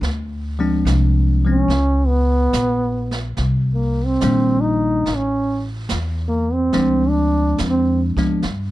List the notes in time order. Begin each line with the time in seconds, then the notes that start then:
0.01 D2, brush sweep, snare
0.59 F3 G#3 C4 D4
0.85 C2, snare, hi-hat pedal
1.44 F3 G#3 B3 C#4
1.50 C#4
1.68 C#2, brush sweep, snare
2.07 B3
2.53 A#1, snare, hi-hat pedal
3.11 snare
3.37 C2, brush sweep, snare
3.74 A#3
4.05 C4
4.21 A#1 D#3 G3 A#3 D4, snare, hi-hat pedal
4.61 D#4
5.06 A1, brush sweep, snare
5.16 C#4
5.89 E2, snare, hi-hat pedal
6.28 A#3
6.53 C4
6.73 D2 F3 G#3 C4 D4, brush sweep, snare
7.09 D4
7.58 F2, snare, hi-hat pedal
7.70 C4
8.17 F3 G#3 B3 D4, muted upright bass stroke, kick, snare
8.42 G2, brush sweep, snare